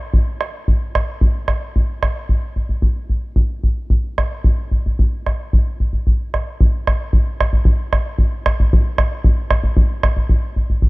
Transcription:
0.14 bombo low medium
0.41 bombo rim medium
0.68 bombo low medium
0.95 bombo rim medium
0.95 bombo low medium
1.21 bombo low medium
1.48 bombo rim soft
1.48 bombo low soft
1.76 bombo low medium
2.03 bombo rim soft
2.03 bombo low soft
2.29 bombo low medium
2.56 bombo low soft
2.69 bombo low soft
2.82 bombo low medium
3.10 bombo low soft
3.36 bombo low medium
3.64 bombo low medium
3.90 bombo low medium
4.18 bombo rim soft
4.18 bombo low soft
4.44 bombo low medium
4.71 bombo low medium
4.86 bombo low soft
4.99 bombo low medium
5.26 bombo rim soft
5.26 bombo low soft
5.53 bombo low medium
5.80 bombo low soft
5.93 bombo low soft
6.07 bombo low medium
6.34 bombo rim soft
6.34 bombo low soft
6.61 bombo low medium
6.87 bombo rim medium
6.87 bombo low medium
7.13 bombo low medium
7.41 bombo rim medium
7.41 bombo low soft
7.53 bombo low medium
7.65 bombo low medium
7.93 bombo rim soft
7.93 bombo low medium
8.18 bombo low medium
8.46 bombo rim medium
8.46 bombo low medium
8.60 bombo low medium
8.73 bombo low medium
8.98 bombo rim medium
8.98 bombo low medium
9.24 bombo low medium
9.51 bombo rim medium
9.51 bombo low medium
9.64 bombo low medium
9.77 bombo low medium
10.03 bombo rim medium
10.03 bombo low medium
10.17 bombo low medium
10.29 bombo low medium
10.56 bombo low soft
10.70 bombo low soft
10.82 bombo low medium

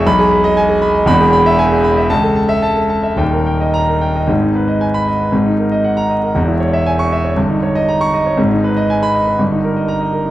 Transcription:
0.07 1.05 B1 loud
0.07 0.26 B5 loud
0.19 0.39 G#4 loud
0.31 0.51 B5 medium
0.44 0.64 D#5 loud
0.57 0.77 G#5 loud
0.69 0.89 G#4 medium
0.82 1.02 B5 medium
0.95 1.07 D#5 medium
1.06 2.06 E1 loud
1.06 2.07 E2 loud
1.06 1.28 B5 loud
1.20 1.41 G#4 medium
1.33 1.53 B5 loud
1.46 1.67 E5 loud
1.59 1.79 G#5 loud
1.71 1.92 G#4 medium
1.84 2.05 B5 medium
1.97 2.10 E5 medium
2.10 3.15 C#2 loud
2.10 2.31 A5 loud
2.23 2.44 A4 medium
2.36 2.57 A5 medium
2.49 2.70 E5 loud
2.62 2.84 A5 loud
2.75 2.98 A4 medium
2.89 3.12 A5 medium
3.03 3.18 E5 medium
3.16 4.24 D#1 medium
3.16 4.25 D#2 medium
3.16 3.40 G5 medium
3.32 3.55 A#4 medium
3.46 3.68 G5 medium
3.60 3.82 D#5 medium
3.74 3.96 A#5 loud
3.88 4.10 A#4 medium
4.01 4.23 G5 medium
4.15 4.29 D#5 medium
4.28 5.29 G#1 medium
4.28 5.30 G#2 medium
4.42 4.63 D#4 medium
4.55 4.76 B4 medium
4.68 4.89 D#5 medium
4.81 5.02 G#5 medium
4.94 5.15 B5 loud
5.07 5.28 D#5 medium
5.20 5.33 B4 medium
5.32 6.32 G#1 medium
5.32 6.32 G#2 medium
5.46 5.66 D#4 medium
5.59 5.79 A#4 medium
5.72 5.92 D#5 medium
5.84 6.05 F#5 medium
5.97 6.17 A#5 loud
6.10 6.30 D#5 medium
6.23 6.35 A#4 medium
6.35 7.33 E1 medium
6.35 7.34 E2 medium
6.48 6.68 E4 medium
6.60 6.81 C#5 medium
6.73 6.94 E5 medium
6.86 7.06 G#5 medium
6.99 7.19 C#6 loud
7.12 7.32 E5 medium
7.24 7.37 C#5 medium
7.36 8.34 G1 medium
7.36 8.35 G2 medium
7.50 7.70 D#4 medium
7.63 7.83 C#5 medium
7.75 7.95 D#5 medium
7.89 8.08 A#5 medium
8.01 8.20 C#6 loud
8.14 8.33 D#5 medium
8.26 8.38 C#5 medium
8.37 9.35 G#1 medium
8.37 9.36 G#2 medium
8.51 8.71 D#4 medium
8.64 8.84 B4 medium
8.76 8.96 D#5 medium
8.90 9.09 G#5 medium
9.03 9.22 B5 loud
9.15 9.34 D#5 medium
9.27 9.39 B4 medium
9.38 10.31 G1 medium
9.38 10.31 G2 medium
9.52 9.71 D#4 medium
9.64 9.83 A#4 medium
9.76 9.95 D#5 medium
9.88 10.08 A#5 medium
10.01 10.20 D#5 medium
10.13 10.31 A#4 medium
10.26 10.31 D#4 medium

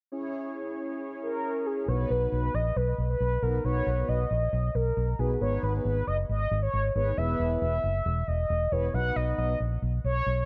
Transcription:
0.12 1.85 C#4 medium
0.12 1.85 E4 medium
0.12 1.85 G#4 medium
0.12 1.85 C#5 medium
1.22 1.68 A#4 medium
1.66 1.90 G#4 medium
1.88 2.04 B1 loud
1.88 2.47 B3 medium
1.88 2.47 D#4 medium
1.88 2.47 F#4 medium
1.88 2.47 B4 medium
1.88 2.12 C#5 loud
2.10 2.26 B1 medium
2.10 2.32 B4 medium
2.32 2.48 B1 loud
2.32 2.56 B4 medium
2.54 2.70 A#1 medium
2.54 2.78 D#5 medium
2.76 2.92 B1 loud
2.76 3.09 B4 medium
2.98 3.14 B1 medium
3.10 3.44 B4 medium
3.20 3.36 B1 loud
3.42 3.58 B1 loud
3.42 3.57 B3 medium
3.42 3.57 D#4 medium
3.42 3.57 F#4 medium
3.42 3.64 A#4 medium
3.42 3.57 B4 medium
3.64 3.80 B1 loud
3.64 4.24 B3 medium
3.64 4.24 D#4 medium
3.64 4.24 F#4 medium
3.64 4.24 B4 medium
3.64 4.10 C#5 loud
3.87 4.02 B1 loud
4.09 4.24 B1 medium
4.09 4.76 D#5 loud
4.31 4.46 A#1 medium
4.53 4.68 B1 loud
4.75 4.90 B1 loud
4.75 5.21 A#4 loud
4.97 5.12 B1 loud
5.19 5.34 B1 loud
5.19 5.34 B3 medium
5.19 5.34 D#4 medium
5.19 5.34 F#4 medium
5.19 5.41 G#4 medium
5.19 5.34 B4 medium
5.41 5.56 G#1 loud
5.41 6.00 B3 medium
5.41 6.00 D#4 medium
5.41 6.00 G#4 medium
5.41 6.00 B4 medium
5.41 5.62 C#5 loud
5.63 5.78 G#1 loud
5.63 5.73 B4 medium
5.85 6.01 G#1 loud
5.85 6.06 B4 medium
6.07 6.23 F#1 medium
6.07 6.17 D#5 loud
6.29 6.45 G#1 medium
6.29 6.60 D#5 loud
6.51 6.67 G#1 loud
6.62 6.93 C#5 loud
6.73 6.89 G#1 loud
6.95 7.11 G#1 loud
6.95 7.10 B3 medium
6.95 7.10 D#4 medium
6.95 7.10 G#4 medium
6.95 7.10 B4 medium
6.95 7.19 C#5 loud
7.17 7.33 E1 loud
7.17 7.76 B3 medium
7.17 7.76 E4 medium
7.17 7.76 G#4 medium
7.17 7.76 B4 medium
7.17 7.61 E5 loud
7.40 7.55 E1 loud
7.62 7.77 E1 loud
7.62 8.29 E5 loud
7.84 7.99 F#1 medium
8.06 8.21 E1 loud
8.28 8.43 E1 medium
8.28 8.73 D#5 loud
8.50 8.65 E1 loud
8.72 8.87 E1 loud
8.72 8.87 B3 medium
8.72 8.87 E4 medium
8.72 8.87 G#4 medium
8.72 8.87 B4 medium
8.72 8.93 C#5 loud
8.94 9.09 B1 loud
8.94 9.53 B3 medium
8.94 9.53 D#4 medium
8.94 9.53 F#4 medium
8.94 9.53 B4 medium
8.94 9.17 F#5 loud
9.16 9.32 B1 medium
9.16 9.38 D#5 loud
9.38 9.54 B1 loud
9.38 9.59 D#5 medium
9.60 9.76 A#1 loud
9.82 9.98 B1 loud
10.04 10.20 B1 loud
10.04 10.45 C#5 medium
10.26 10.42 B1 loud

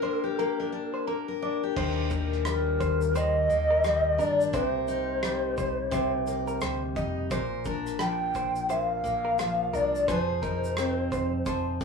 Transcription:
0.00 0.39 A#3 medium
0.00 0.59 D4 medium
0.00 0.23 G4 soft
0.00 1.07 A#4 medium
0.00 1.28 A#4 medium
0.00 0.23 C5 medium
0.24 1.63 G4 medium
0.39 1.07 A#3 medium
0.39 0.58 A#4 medium
0.60 0.72 D4 soft
0.72 1.42 D4 soft
0.94 1.07 C5 medium
1.07 2.46 A#3 medium
1.07 1.27 A#4 medium
1.28 1.78 A#4 medium
1.42 3.19 D4 medium
1.42 1.62 D5 medium
1.63 4.18 G4 soft
1.77 2.77 D#2 medium
1.77 3.15 D#3 medium
1.77 4.54 A#4 medium
1.77 2.11 C5 medium
1.77 kick loud
1.77 crash medium
2.10 2.63 A#4 medium
2.10 kick medium
2.10 shaker soft
2.32 cross-stick soft
2.45 3.84 G3 medium
2.45 3.18 A#4 medium
2.45 cross-stick loud
2.45 shaker medium
2.80 3.46 D#2 medium
2.80 3.00 C5 medium
2.80 kick medium
2.80 shaker soft
3.01 shaker soft
3.15 4.53 D#3 medium
3.15 3.35 C5 medium
3.15 4.23 D#5 loud
3.15 shaker medium
3.50 5.94 A#3 soft
3.50 shaker soft
3.70 3.84 A#4 medium
3.84 5.23 G3 medium
3.84 cross-stick loud
3.84 shaker medium
4.18 4.53 G1 medium
4.18 4.62 D4 medium
4.18 4.39 A#4 medium
4.18 4.56 D5 medium
4.18 shaker soft
4.41 shaker medium
4.53 5.53 C2 medium
4.53 5.90 C3 medium
4.53 7.31 A#4 medium
4.53 4.67 B4 medium
4.53 4.88 C5 medium
4.53 kick loud
4.53 shaker medium
4.67 6.62 C5 medium
4.88 6.95 D#4 medium
4.88 5.40 A#4 medium
4.88 shaker soft
5.23 6.60 G3 medium
5.23 cross-stick loud
5.23 shaker medium
5.58 5.90 C2 medium
5.58 5.77 C5 medium
5.58 kick medium
5.58 shaker soft
5.91 6.58 C2 medium
5.91 7.39 C3 medium
5.91 6.12 C5 medium
5.91 kick medium
5.91 shaker medium
6.27 9.03 A#3 soft
6.27 shaker soft
6.47 6.61 A#4 medium
6.47 shaker soft
6.61 6.93 D2 medium
6.61 7.39 G3 medium
6.61 6.82 C5 medium
6.61 cross-stick loud
6.61 shaker medium
6.96 7.28 F1 medium
6.96 7.39 D#4 medium
6.96 7.16 D#5 medium
6.96 kick medium
6.96 shaker soft
7.31 8.31 A#1 medium
7.31 8.68 A#2 medium
7.31 10.08 A#4 medium
7.31 7.64 C5 medium
7.31 kick loud
7.31 shaker medium
7.65 9.72 D4 medium
7.65 8.18 A#4 medium
7.65 kick medium
7.65 shaker soft
7.86 cross-stick soft
7.86 shaker soft
7.99 9.39 F3 medium
7.99 8.72 G5 loud
7.99 cross-stick loud
7.99 shaker medium
8.35 9.00 A#1 medium
8.35 8.55 C5 medium
8.35 kick medium
8.35 shaker soft
8.55 shaker soft
8.69 10.16 A#2 medium
8.69 8.89 C5 medium
8.69 8.81 E5 loud
8.69 shaker medium
8.81 9.77 F5 loud
9.04 9.69 A#1 medium
9.04 10.16 A#3 medium
9.04 shaker soft
9.25 9.38 A#4 medium
9.39 10.08 F3 medium
9.39 cross-stick loud
9.39 shaker medium
9.73 10.05 C2 medium
9.73 10.16 D4 medium
9.73 9.93 A#4 medium
9.73 10.12 D5 medium
9.73 shaker soft
9.95 shaker medium
10.08 11.08 F1 medium
10.08 11.45 F3 medium
10.08 11.84 G#4 soft
10.08 10.41 C5 medium
10.08 11.48 C5 medium
10.08 kick loud
10.08 shaker medium
10.42 11.84 D#4 medium
10.42 10.94 A#4 medium
10.42 kick medium
10.42 shaker soft
10.64 shaker soft
10.77 11.80 C4 medium
10.77 cross-stick loud
10.77 shaker medium
11.12 11.43 F1 loud
11.12 11.32 C5 medium
11.12 kick medium
11.12 shaker soft
11.46 11.84 F1 medium
11.46 11.84 F3 medium
11.46 11.66 C5 medium
11.46 kick medium
11.46 shaker medium
11.81 11.84 C4 medium
11.81 kick medium
11.81 shaker soft

